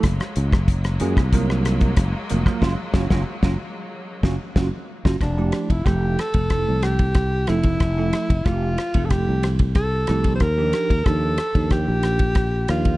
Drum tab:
RD |----------------|----------------|x-xxx-xxx-xxx-xx|x-xxx-xxx-xxx-xx|
HH |xxx-xxxxx-xxx-x-|----------------|----------------|----------------|
SD |rr-r-r-r-rr-r--r|o-oo-o----o-o--o|r-r-r-r-r-r-r-r-|r-r-r-r-r-r-r-r-|
BD |o--oo--oo--oo--o|o-oo-o----o-o--o|o--oo--oo--oo--o|o--oo--oo--oo--o|

RD |x-xxx-xxx-xxx-xx|
HH |----------------|
SD |r-r-r-r-r-r-r-r-|
BD |o--oo--oo--oo--o|